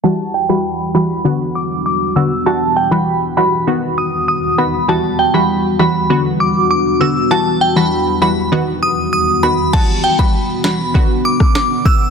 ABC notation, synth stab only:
X:1
M:4/4
L:1/16
Q:1/4=99
K:Em
V:1 name="Synth stab" clef=bass
[E,G,F]3 [E,G,F]3 [E,G,F]2 [D,B,F]6 [D,B,F] z | [E,G,F]3 [E,G,F]3 [E,G,F]2 [^D,B,F]6 [D,B,F] z | [E,G,F]3 [E,G,F]3 [E,G,F]2 [D,B,F]6 [D,B,F] z | [E,G,F]3 [E,G,F]3 [E,G,F]2 [^D,B,F]6 [D,B,F] z |
[E,G,F]3 [E,G,F] z2 [E,G,F] z [D,B,F]6- [D,B,F] z |]